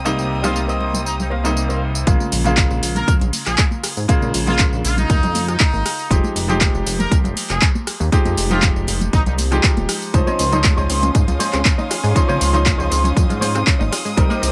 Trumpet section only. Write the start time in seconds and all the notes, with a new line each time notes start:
0.44 F4
1.06 D#4
1.19 D#4
2.96 A#4
3.47 G#4
4.48 F4
4.84 F4
4.98 D#4
5.48 D#4
6.99 A#4
7.51 G#4
8.51 F4
9.13 D#4
9.27 D#4